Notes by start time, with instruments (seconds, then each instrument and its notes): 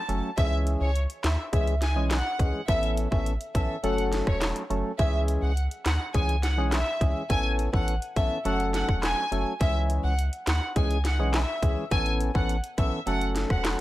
Already playing: violin section A5
0.08 analog synth bass F#1, synth stab F#3 A3 C#4 A4, closed hi-hat
0.37 analog synth bass C#2, synth stab E3 G#3 C#4 G#4, violin section E5, kick, closed hi-hat
0.67 closed hi-hat
0.81 analog synth bass C#2, violin section C#5
0.96 closed hi-hat
1.10 closed hi-hat
1.24 analog synth bass D#2, violin section E5, snare, clap, closed hi-hat
1.53 analog synth bass C#2, synth stab E3 G#3 C#4 G#4, violin section E5, kick, closed hi-hat
1.68 closed hi-hat
1.82 violin section G#5, snare, closed hi-hat
1.96 analog synth bass B1, synth stab E3 G#3 C#4 G#4
2.11 violin section F#5, snare, clap, closed hi-hat
2.39 analog synth bass C#2, synth stab E3 G#3 C#4 G#4, kick, closed hi-hat
2.68 analog synth bass A1, synth stab E3 B3 C#4 A4, violin section E5, kick, closed hi-hat
2.83 closed hi-hat
2.97 closed hi-hat
3.11 analog synth bass A1, synth stab E3 B3 C#4 A4, violin section E5, kick
3.26 closed hi-hat
3.41 closed hi-hat
3.55 analog synth bass B1, synth stab E3 B3 C#4 A4, violin section E5, kick, closed hi-hat
3.83 analog synth bass F#1, synth stab F#3 A3 C#4 A4, violin section F#5, closed hi-hat
3.98 closed hi-hat
4.13 snare, closed hi-hat
4.27 analog synth bass E1, violin section C#5, kick, cross-stick
4.41 snare, clap, closed hi-hat
4.56 closed hi-hat
4.70 analog synth bass F#1, synth stab F#3 A3 C#4 A4, closed hi-hat
4.99 analog synth bass C#2, synth stab E3 G#3 C#4 G#4, violin section E5, kick, closed hi-hat
5.28 closed hi-hat
5.42 analog synth bass C#2, violin section F#5
5.57 closed hi-hat
5.71 closed hi-hat
5.86 analog synth bass D#2, violin section F#5, snare, clap, closed hi-hat
6.14 analog synth bass C#2, synth stab E3 G#3 C#4 G#4, violin section G#5, kick, closed hi-hat
6.29 closed hi-hat
6.43 violin section F#5, snare, closed hi-hat
6.58 analog synth bass B1, synth stab E3 G#3 C#4 G#4
6.72 violin section E5, snare, clap, closed hi-hat
7.01 analog synth bass C#2, synth stab E3 G#3 C#4 G#4, kick, closed hi-hat
7.30 analog synth bass A1, synth stab E3 B3 C#4 A4, violin section G#5, kick, closed hi-hat
7.59 closed hi-hat
7.73 analog synth bass A1, synth stab E3 B3 C#4 A4, violin section F#5, kick
7.88 closed hi-hat
8.02 closed hi-hat
8.16 analog synth bass B1, synth stab E3 B3 C#4 A4, violin section E5, kick, closed hi-hat
8.45 analog synth bass F#1, synth stab F#3 A3 C#4 A4, violin section F#5, closed hi-hat
8.60 closed hi-hat
8.74 violin section F#5, snare, closed hi-hat
8.89 analog synth bass E1, kick
9.03 violin section G#5, snare, clap, closed hi-hat
9.32 analog synth bass F#1, synth stab F#3 A3 C#4 A4, closed hi-hat
9.60 analog synth bass C#2, synth stab E3 G#3 C#4 G#4, violin section E5, kick, closed hi-hat
9.90 closed hi-hat
10.04 analog synth bass C#2, violin section F#5
10.19 closed hi-hat
10.33 closed hi-hat
10.47 analog synth bass D#2, violin section F#5, snare, clap, closed hi-hat
10.76 analog synth bass C#2, synth stab E3 G#3 C#4 G#4, violin section G#5, kick, closed hi-hat
10.91 closed hi-hat
11.05 violin section F#5, snare, closed hi-hat
11.19 analog synth bass B1, synth stab E3 G#3 C#4 G#4
11.34 violin section E5, snare, clap, closed hi-hat
11.62 analog synth bass C#2, synth stab E3 G#3 C#4 G#4, kick, closed hi-hat
11.91 analog synth bass A1, synth stab E3 B3 C#4 A4, violin section G#5, kick, closed hi-hat
12.06 closed hi-hat
12.21 closed hi-hat
12.34 analog synth bass A1, synth stab E3 B3 C#4 A4, violin section F#5, kick
12.49 closed hi-hat
12.64 closed hi-hat
12.78 analog synth bass B1, synth stab E3 B3 C#4 A4, violin section E5, kick, closed hi-hat
13.06 analog synth bass F#1, synth stab F#3 A3 C#4 A4, violin section F#5, closed hi-hat
13.21 closed hi-hat
13.36 snare, closed hi-hat
13.50 analog synth bass E1, violin section F#5, kick, cross-stick
13.65 snare, clap, closed hi-hat